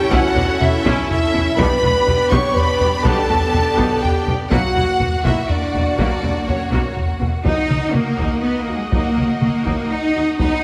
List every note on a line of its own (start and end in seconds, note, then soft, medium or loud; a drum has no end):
0.00 1.56 C#4 loud
0.00 1.57 E4 loud
0.00 1.56 A4 loud
0.00 1.57 C#5 loud
0.10 0.18 B1 loud
0.10 0.19 B2 loud
0.10 0.27 E3 medium
0.10 0.33 C#4 loud
0.10 0.28 C#4 loud
0.10 0.33 E4 loud
0.10 0.59 F#4 loud
0.10 0.59 F#5 loud
0.10 0.60 F#5 loud
0.10 0.61 F#5 loud
0.10 taiko loud
0.35 0.43 B1 medium
0.35 0.44 B2 medium
0.35 0.43 B3 medium
0.35 0.43 D4 medium
0.35 taiko low medium
0.60 0.68 B1 medium
0.60 0.68 B2 medium
0.60 0.69 C#4 medium
0.60 1.09 E4 loud
0.60 0.69 E4 medium
0.60 1.08 E5 loud
0.60 1.09 E5 loud
0.60 taiko low medium
0.85 0.93 B1 loud
0.85 0.93 B2 loud
0.85 1.08 C#4 loud
0.85 1.08 E4 loud
0.85 taiko loud
1.09 1.57 E4 loud
1.09 1.57 E5 loud
1.09 taiko low medium
1.33 1.41 B1 medium
1.33 1.41 B2 medium
1.33 1.43 C#4 medium
1.33 1.42 E4 medium
1.33 taiko low medium
1.56 1.66 B1 loud
1.56 1.66 B2 loud
1.56 1.76 G3 medium
1.56 4.51 B3 loud
1.56 1.81 B3 loud
1.56 4.50 D4 loud
1.56 1.75 D4 loud
1.56 4.51 G4 loud
1.56 1.81 G4 loud
1.56 2.32 B4 loud
1.56 4.50 D5 loud
1.56 2.29 B5 loud
1.56 2.31 B5 loud
1.56 taiko loud
1.83 1.91 B1 medium
1.83 1.91 B2 medium
1.83 1.91 A3 medium
1.83 1.91 F#4 medium
1.83 taiko low medium
2.06 2.16 B1 medium
2.06 2.14 B2 medium
2.06 2.15 B3 medium
2.06 2.15 G4 medium
2.06 taiko low medium
2.30 2.39 B1 loud
2.30 2.40 B2 loud
2.30 2.54 B3 loud
2.30 2.54 G4 loud
2.30 2.56 C#5 loud
2.30 2.55 C#6 loud
2.30 taiko medium
2.54 2.89 B4 loud
2.54 3.03 B5 loud
2.54 3.04 B5 loud
2.54 taiko low medium
2.80 2.88 B1 medium
2.80 2.88 B2 medium
2.80 2.89 B3 medium
2.80 2.89 G4 medium
2.80 taiko low medium
3.03 3.12 B1 loud
3.03 3.13 B2 loud
3.03 3.22 G3 medium
3.03 3.28 B3 loud
3.03 3.22 D4 medium
3.03 3.28 G4 loud
3.03 4.00 A4 loud
3.03 4.00 A5 loud
3.03 4.03 A5 loud
3.03 taiko loud
3.29 3.37 B1 medium
3.29 3.37 B2 medium
3.29 3.37 A3 medium
3.29 3.37 F#4 medium
3.29 taiko low medium
3.52 3.60 B1 medium
3.52 3.61 B2 medium
3.52 3.61 B3 medium
3.52 3.61 G4 medium
3.52 taiko low medium
3.77 3.85 B1 loud
3.77 3.86 B2 loud
3.77 4.00 B3 loud
3.77 4.00 G4 loud
3.77 taiko medium
4.02 4.27 G4 loud
4.02 4.26 G5 loud
4.02 4.26 G5 medium
4.02 4.27 G5 loud
4.02 taiko low medium
4.27 4.35 B1 medium
4.27 4.35 B2 medium
4.27 4.35 B3 medium
4.27 4.35 G4 medium
4.27 taiko low medium
4.50 4.59 B1 loud
4.50 4.59 B2 loud
4.50 4.68 F#3 medium
4.50 7.44 A#3 medium
4.50 4.73 A#3 medium
4.50 4.69 A#3 medium
4.50 7.45 F#4 medium
4.50 4.73 F#4 medium
4.50 5.21 F#4 loud
4.50 7.45 F#5 medium
4.50 5.20 F#5 loud
4.50 5.21 F#5 loud
4.50 taiko medium
4.76 4.84 B1 medium
4.76 4.84 B2 medium
4.76 4.84 G3 medium
4.76 4.84 E4 medium
4.76 taiko low medium
5.00 5.08 B1 medium
5.00 5.08 B2 medium
5.00 5.09 A#3 medium
5.00 5.08 F#4 medium
5.00 taiko low medium
5.23 5.31 B1 loud
5.23 5.33 B2 medium
5.23 5.47 A#3 medium
5.23 5.49 E4 loud
5.23 5.47 F#4 medium
5.23 5.49 E5 medium
5.23 5.50 E5 medium
5.23 taiko medium
5.49 5.97 D4 medium
5.49 5.98 D5 medium
5.49 5.97 D5 medium
5.49 taiko low medium
5.74 5.82 B1 medium
5.74 5.82 B2 medium
5.74 5.82 A#3 medium
5.74 5.82 F#4 medium
5.74 taiko low medium
5.98 6.06 B1 medium
5.98 6.07 B2 medium
5.98 6.16 F#3 medium
5.98 6.21 A#3 medium
5.98 6.16 A#3 medium
5.98 6.47 D4 loud
5.98 6.20 F#4 medium
5.98 6.46 D5 medium
5.98 6.47 D5 medium
5.98 taiko medium
6.23 6.31 B1 medium
6.23 6.31 B2 medium
6.23 6.31 G3 medium
6.23 6.31 E4 medium
6.23 taiko low medium
6.47 6.55 B1 medium
6.47 6.56 B2 medium
6.47 6.56 A#3 medium
6.47 6.96 C#4 medium
6.47 6.56 F#4 medium
6.47 6.96 C#5 medium
6.47 6.97 C#5 medium
6.47 taiko low medium
6.70 6.80 B1 medium
6.70 6.80 B2 medium
6.70 6.94 A#3 medium
6.70 6.94 F#4 medium
6.70 taiko medium
6.97 taiko low medium
7.20 7.28 B1 medium
7.20 7.28 B2 medium
7.20 7.28 A#3 medium
7.20 7.28 F#4 medium
7.20 taiko low medium
7.44 7.52 D#2 medium
7.44 7.63 F#3 medium
7.44 10.36 A#3 medium
7.44 7.63 A#3 medium
7.44 7.90 D#4 medium
7.44 7.68 D#4 medium
7.44 10.64 D#4 medium
7.44 7.91 D#4 medium
7.44 10.64 F#4 medium
7.44 10.35 D#5 medium
7.44 10.36 D#5 medium
7.44 7.91 D#5 medium
7.44 10.36 F#5 medium
7.44 10.64 F#5 medium
7.44 taiko medium
7.69 7.78 D#2 soft
7.69 7.77 A#4 soft
7.69 taiko mid soft
7.92 8.02 D#2 soft
7.92 8.43 A#3 medium
7.92 8.42 A#3 medium
7.92 8.00 F#4 soft
7.92 8.43 A#4 medium
7.92 taiko mid medium
8.18 8.26 D#2 medium
8.18 8.41 D#4 medium
8.18 taiko medium
8.42 8.59 B3 medium
8.42 8.59 B4 medium
8.59 8.76 A#3 medium
8.59 8.75 A#4 medium
8.67 8.76 D#2 medium
8.67 8.75 F#4 soft
8.75 8.92 G#3 medium
8.75 8.93 G#3 medium
8.75 8.92 G#4 medium
8.92 9.01 D#2 medium
8.92 9.10 F#3 medium
8.92 9.40 A#3 medium
8.92 9.10 A#3 medium
8.92 9.15 D#4 medium
8.92 9.41 A#4 medium
8.92 taiko medium
9.16 9.25 D#2 soft
9.16 9.24 A#4 soft
9.16 taiko mid soft
9.40 9.50 D#2 soft
9.40 9.89 A#3 medium
9.40 9.90 A#3 medium
9.40 9.48 F#4 medium
9.40 9.90 A#4 medium
9.40 taiko mid medium
9.64 9.74 D#2 medium
9.64 9.88 D#4 medium
9.64 taiko medium
9.91 10.38 D#4 medium
9.91 10.39 D#4 medium
9.91 10.38 D#5 medium
10.15 10.23 D#2 medium
10.15 10.23 F#4 soft
10.38 10.48 D#2 medium
10.38 10.57 F#3 medium
10.38 10.64 B3 medium
10.38 10.57 B3 medium
10.38 10.62 D#4 medium
10.38 10.64 D#4 medium
10.38 10.64 D#5 medium
10.38 10.64 F#5 medium
10.38 10.64 B5 medium
10.38 taiko medium